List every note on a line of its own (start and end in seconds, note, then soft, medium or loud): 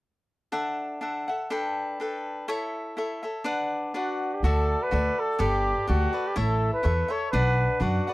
0.52 1.00 D4 soft
0.52 1.01 A4 medium
0.52 1.01 E5 medium
0.52 1.01 F#5 medium
1.01 1.28 D4 soft
1.01 1.28 A4 soft
1.01 1.28 E5 soft
1.01 1.27 F#5 soft
1.28 1.49 A4 soft
1.28 1.51 E5 soft
1.28 1.50 F#5 soft
1.50 1.99 D4 medium
1.50 1.99 A4 medium
1.50 1.99 B4 medium
1.50 2.00 G5 medium
2.00 2.48 D4 soft
2.00 2.47 A4 soft
2.00 2.48 B4 soft
2.00 2.49 G5 soft
2.48 2.96 E4 soft
2.48 2.97 A4 medium
2.48 2.97 C#5 medium
2.48 2.97 E5 medium
2.97 3.23 E4 soft
2.97 3.23 A4 soft
2.97 3.22 C#5 soft
2.97 3.21 E5 medium
3.23 3.45 A4 soft
3.23 3.45 C#5 soft
3.23 3.45 E5 soft
3.44 3.94 D4 medium
3.44 3.94 B4 medium
3.44 3.94 D5 medium
3.44 3.94 F#5 medium
3.94 4.43 D4 soft
3.94 4.36 F#4 medium
3.94 4.43 B4 soft
3.94 4.43 D5 soft
3.94 4.44 F#5 medium
4.34 4.45 G4 soft
4.43 4.74 D2 medium
4.43 4.90 F#4 medium
4.43 4.84 A4 medium
4.43 4.92 A4 medium
4.43 4.92 D5 medium
4.43 4.91 E5 medium
4.83 5.21 B4 medium
4.91 5.09 D2 medium
4.91 5.39 F#4 soft
4.91 5.38 A4 soft
4.91 5.39 D5 soft
4.91 5.39 E5 soft
5.20 5.42 A4 medium
5.39 5.71 G1 medium
5.39 5.86 G4 medium
5.39 5.88 G4 medium
5.39 5.87 A4 medium
5.39 5.87 B4 medium
5.39 5.87 D5 medium
5.87 6.06 D2 medium
5.87 6.29 F#4 medium
5.87 6.14 G4 soft
5.87 6.13 A4 soft
5.87 6.13 B4 soft
5.87 6.11 D5 soft
6.13 6.35 A4 soft
6.13 6.36 B4 soft
6.13 6.36 D5 soft
6.27 6.38 G4 medium
6.36 6.68 A1 medium
6.36 6.82 E4 medium
6.36 6.82 A4 medium
6.36 6.73 A4 medium
6.36 6.83 C#5 medium
6.36 6.84 E5 medium
6.73 7.13 B4 medium
6.83 7.02 E2 medium
6.83 7.10 E4 soft
6.83 7.09 A4 soft
6.83 7.08 C#5 medium
6.83 7.07 E5 soft
7.08 7.33 A4 soft
7.08 7.32 C#5 soft
7.08 7.31 C#5 medium
7.08 7.32 E5 soft
7.31 7.65 B1 medium
7.31 7.79 D4 medium
7.31 7.77 B4 medium
7.31 7.79 B4 medium
7.31 7.80 D5 medium
7.31 7.80 F#5 medium
7.80 7.98 F#2 medium
7.80 8.07 D4 soft
7.80 8.14 F#4 medium
7.80 8.07 B4 soft
7.80 8.07 D5 soft
7.80 8.06 F#5 soft
8.07 8.14 B4 soft
8.07 8.14 D5 soft
8.07 8.14 F#5 soft